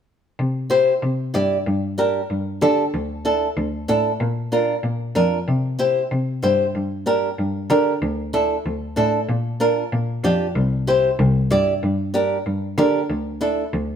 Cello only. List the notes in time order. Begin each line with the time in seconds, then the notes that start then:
0.39 C3
1.02 C3
1.34 G2
1.66 G2
2.30 G2
2.62 D3
2.93 D2
3.56 D2
3.89 A2
4.20 A#2
4.83 A#2
5.15 F2
5.47 C3
6.11 C3
6.43 G2
6.74 G2
7.38 G2
7.70 D3
8.02 D2
8.65 D2
8.97 A2
9.28 A#2
9.92 A#2
10.23 F2
10.55 C2
11.19 C2
11.50 G2
11.83 G2
12.46 G2
12.78 D3
13.09 D2
13.73 D2